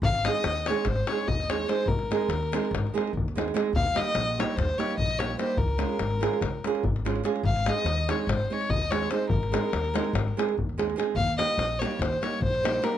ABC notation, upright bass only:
X:1
M:9/8
L:1/8
Q:3/8=97
K:Ab
V:1 name="Upright bass" clef=bass
A,,,2 E,,2 A,,, z E,,3 | A,,,2 E,,2 A,,, z E,,3 | E,,2 B,,,2 E,, z B,,,3 | D,,2 A,,,2 D,, z A,,,3 |
A,,,2 E,,2 A,,, z E,,3 | A,,,2 E,,2 A,,, z E,,3 | E,,2 B,,,2 E,, z B,,,3 |]